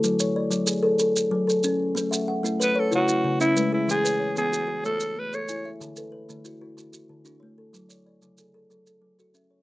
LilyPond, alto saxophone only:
\new Staff \with { instrumentName = "Alto saxophone" } { \time 12/8 \key fis \minor \tempo 4. = 125 r1. | r2 b'8 a'8 fis'4. e'4 e'8 | gis'4. gis'4. a'4 b'8 cis''4 r8 | r1. |
r1. | }